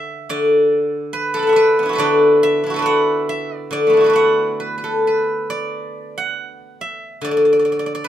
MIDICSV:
0, 0, Header, 1, 2, 480
1, 0, Start_track
1, 0, Tempo, 841515
1, 185, Time_signature, 2, 2, 24, 8
1, 1147, Tempo, 874636
1, 3547, Tempo, 840336
1, 4516, End_track
2, 0, Start_track
2, 0, Title_t, "Guzheng"
2, 0, Program_c, 0, 107
2, 0, Note_on_c, 0, 50, 44
2, 0, Note_on_c, 0, 69, 57
2, 0, Note_on_c, 0, 71, 59
2, 0, Note_on_c, 0, 74, 80
2, 0, Note_on_c, 0, 76, 78
2, 0, Note_on_c, 0, 78, 84
2, 64, Note_off_c, 0, 69, 0
2, 93, Note_off_c, 0, 71, 0
2, 161, Note_off_c, 0, 50, 0
2, 168, Note_off_c, 0, 74, 0
2, 168, Note_on_c, 0, 50, 55
2, 170, Note_on_c, 0, 74, 90
2, 482, Note_off_c, 0, 78, 0
2, 645, Note_on_c, 0, 71, 72
2, 764, Note_on_c, 0, 69, 72
2, 779, Note_on_c, 0, 86, 33
2, 793, Note_on_c, 0, 83, 38
2, 813, Note_on_c, 0, 81, 42
2, 838, Note_on_c, 0, 78, 47
2, 847, Note_off_c, 0, 76, 0
2, 850, Note_on_c, 0, 76, 50
2, 868, Note_off_c, 0, 74, 0
2, 870, Note_on_c, 0, 74, 51
2, 889, Note_off_c, 0, 71, 0
2, 891, Note_on_c, 0, 71, 78
2, 1021, Note_on_c, 0, 59, 40
2, 1042, Note_on_c, 0, 62, 38
2, 1058, Note_on_c, 0, 64, 47
2, 1079, Note_on_c, 0, 66, 51
2, 1099, Note_off_c, 0, 69, 0
2, 1101, Note_on_c, 0, 69, 53
2, 1112, Note_off_c, 0, 71, 0
2, 1114, Note_on_c, 0, 71, 57
2, 1125, Note_off_c, 0, 50, 0
2, 1131, Note_on_c, 0, 50, 67
2, 1135, Note_off_c, 0, 74, 0
2, 1138, Note_on_c, 0, 74, 101
2, 1375, Note_off_c, 0, 76, 0
2, 1377, Note_on_c, 0, 76, 84
2, 1462, Note_off_c, 0, 86, 0
2, 1488, Note_off_c, 0, 62, 0
2, 1490, Note_on_c, 0, 62, 38
2, 1503, Note_off_c, 0, 64, 0
2, 1505, Note_on_c, 0, 64, 45
2, 1523, Note_off_c, 0, 66, 0
2, 1525, Note_on_c, 0, 66, 49
2, 1545, Note_off_c, 0, 69, 0
2, 1547, Note_off_c, 0, 83, 0
2, 1547, Note_on_c, 0, 69, 52
2, 1557, Note_off_c, 0, 71, 0
2, 1559, Note_on_c, 0, 71, 61
2, 1571, Note_off_c, 0, 74, 0
2, 1573, Note_on_c, 0, 74, 62
2, 1590, Note_off_c, 0, 76, 0
2, 1592, Note_on_c, 0, 76, 59
2, 1609, Note_off_c, 0, 78, 0
2, 1612, Note_on_c, 0, 78, 82
2, 1621, Note_off_c, 0, 81, 0
2, 1847, Note_off_c, 0, 76, 0
2, 1849, Note_on_c, 0, 76, 76
2, 1992, Note_off_c, 0, 74, 0
2, 1992, Note_off_c, 0, 76, 0
2, 1992, Note_on_c, 0, 74, 76
2, 2071, Note_off_c, 0, 50, 0
2, 2077, Note_on_c, 0, 50, 53
2, 2088, Note_off_c, 0, 74, 0
2, 2088, Note_on_c, 0, 74, 84
2, 2166, Note_on_c, 0, 57, 36
2, 2180, Note_off_c, 0, 59, 0
2, 2182, Note_on_c, 0, 59, 39
2, 2199, Note_off_c, 0, 62, 0
2, 2202, Note_on_c, 0, 62, 40
2, 2220, Note_off_c, 0, 64, 0
2, 2222, Note_on_c, 0, 64, 39
2, 2240, Note_off_c, 0, 66, 0
2, 2242, Note_on_c, 0, 66, 43
2, 2259, Note_off_c, 0, 69, 0
2, 2261, Note_on_c, 0, 69, 44
2, 2270, Note_off_c, 0, 71, 0
2, 2272, Note_on_c, 0, 71, 43
2, 2289, Note_off_c, 0, 74, 0
2, 2291, Note_on_c, 0, 74, 52
2, 2312, Note_on_c, 0, 76, 47
2, 2322, Note_off_c, 0, 78, 0
2, 2324, Note_on_c, 0, 78, 72
2, 2565, Note_off_c, 0, 71, 0
2, 2567, Note_on_c, 0, 71, 56
2, 2663, Note_off_c, 0, 71, 0
2, 2665, Note_on_c, 0, 71, 39
2, 2696, Note_off_c, 0, 69, 0
2, 2698, Note_on_c, 0, 69, 52
2, 2825, Note_off_c, 0, 71, 0
2, 2827, Note_on_c, 0, 71, 49
2, 3059, Note_off_c, 0, 74, 0
2, 3061, Note_on_c, 0, 74, 83
2, 3204, Note_off_c, 0, 78, 0
2, 3256, Note_off_c, 0, 76, 0
2, 3433, Note_on_c, 0, 78, 71
2, 3536, Note_off_c, 0, 50, 0
2, 3577, Note_off_c, 0, 66, 0
2, 3657, Note_off_c, 0, 64, 0
2, 3746, Note_off_c, 0, 62, 0
2, 3791, Note_on_c, 0, 76, 68
2, 3896, Note_off_c, 0, 59, 0
2, 3917, Note_off_c, 0, 69, 0
2, 3966, Note_off_c, 0, 71, 0
2, 4010, Note_off_c, 0, 57, 0
2, 4021, Note_on_c, 0, 50, 57
2, 4036, Note_off_c, 0, 74, 0
2, 4039, Note_on_c, 0, 74, 78
2, 4075, Note_off_c, 0, 74, 0
2, 4077, Note_on_c, 0, 74, 54
2, 4107, Note_off_c, 0, 74, 0
2, 4110, Note_on_c, 0, 74, 59
2, 4154, Note_off_c, 0, 74, 0
2, 4156, Note_on_c, 0, 74, 42
2, 4197, Note_off_c, 0, 74, 0
2, 4199, Note_on_c, 0, 74, 47
2, 4236, Note_off_c, 0, 74, 0
2, 4238, Note_on_c, 0, 74, 43
2, 4267, Note_off_c, 0, 74, 0
2, 4269, Note_on_c, 0, 74, 49
2, 4308, Note_off_c, 0, 74, 0
2, 4310, Note_on_c, 0, 74, 46
2, 4344, Note_off_c, 0, 78, 0
2, 4349, Note_off_c, 0, 74, 0
2, 4351, Note_on_c, 0, 74, 52
2, 4389, Note_off_c, 0, 74, 0
2, 4391, Note_on_c, 0, 74, 51
2, 4438, Note_off_c, 0, 74, 0
2, 4440, Note_on_c, 0, 74, 64
2, 4495, Note_on_c, 0, 71, 66
2, 4516, Note_off_c, 0, 50, 0
2, 4516, Note_off_c, 0, 71, 0
2, 4516, Note_off_c, 0, 74, 0
2, 4516, Note_off_c, 0, 76, 0
2, 4516, End_track
0, 0, End_of_file